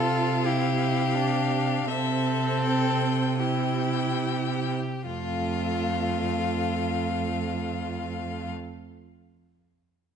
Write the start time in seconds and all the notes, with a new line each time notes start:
Already playing: C3 F4 A4 F5
0.46 E4 G4
1.15 D4
1.85 C3 C4 A4 E5
2.63 G5
3.39 E4 G4 G5
5.06 F2 A3 F4 F5